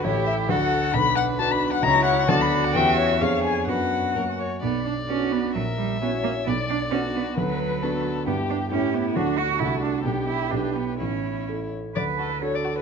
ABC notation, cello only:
X:1
M:2/4
L:1/8
Q:1/4=132
K:Dmix
V:1 name="Cello"
E2 F2 | [K:Bm] D4 | E2 F2- | F2 _A2 |
F3 z | B, D C B, | F, G, B, ^A, | B, D C B, |
F,3 z | [K:D] B, D C B, | D F E D | B, E D B, |
C2 z2 | B2 A2 |]